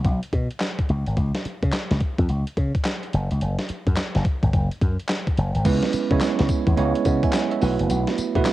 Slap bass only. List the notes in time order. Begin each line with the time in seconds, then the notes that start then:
0.05 B1
0.33 B2
0.89 C#2
1.07 G#1
1.17 C#2
1.45 muted slap bass stroke
1.63 C#3
1.91 C#2
2.19 F2
2.29 C#2
2.57 C#3
3.14 F#1
3.31 C#2
3.42 F#1
3.70 muted slap bass stroke
3.87 F#2
4.15 F#1
4.43 G#1
4.53 F#1
4.82 F#2
5.38 F#1
5.56 G#1
5.66 C#2
5.94 muted slap bass stroke
6.11 C#3
6.40 C#2
6.67 E2
6.78 C#2
7.06 C#3
7.62 B1
7.80 F#1
7.90 B1
8.18 muted slap bass stroke
8.35 B2